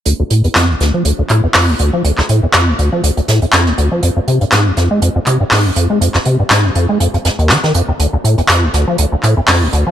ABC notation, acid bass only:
X:1
M:4/4
L:1/16
Q:"Swing 16ths" 1/4=121
K:Flyd
V:1 name="Acid bass" clef=bass
D,, D,, A,, E,, F,, D,, D,, F, D,, D,, A,, E,, F,, D,, D,, F, | D,, D,, A,, E,, F,, D,, D,, F, D,, D,, A,, E,, F,, D,, D,, F, | F,, F,, C, G,, _A,, F,, F,, _A, F,, F,, C, G,, A,, F,, F,, A, | F,, F,, C, G,, _A,, F,, F,, _A, F,, F,, F,, _E,, F, _E, F,, E,, |
D,, D,, A,, E,, F,, D,, D,, F, D,, D,, A,, E,, F,, D,, D,, F, |]